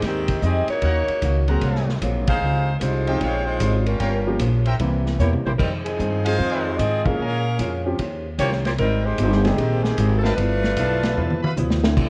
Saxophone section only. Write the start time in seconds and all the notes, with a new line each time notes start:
0.05 D#3 G#3 C4 G4
0.44 C4 G4 G#4 D#5
0.70 A#3 D#4 F#4 C#5
2.28 D#4 G#4 C5 F5
2.78 G#3 D#4 F4 A#4 C5
3.20 G#3 D#4 F4 C#5
3.46 G#3 D#4 F4 C5
3.87 G3 C#4 F4 A#4
5.20 A#3 E4 G4 C#5
5.46 A#3 E4 G4 C5
5.59 G3 C4 D#4 A#4
5.85 F3 C4 D#4 G#4
6.38 G#3 D#4 F4 C5
6.77 C4 F4 G#4 D#5
7.05 C#4 G#4 A#4 F5
8.40 A#3 F4 G4 C#5
8.66 A#3 F4 G4 C5
8.79 G3 C4 D#4 A#4
9.05 G#3 D#4 G4 C5
9.45 D#3 G3 C4 G#4
9.57 D#3 G#3 C4 G4
9.83 D#3 C4 G4 G#4
10.18 A4
10.23 G3 C4 D#4 A#4
10.36 A3 D4 F4 B4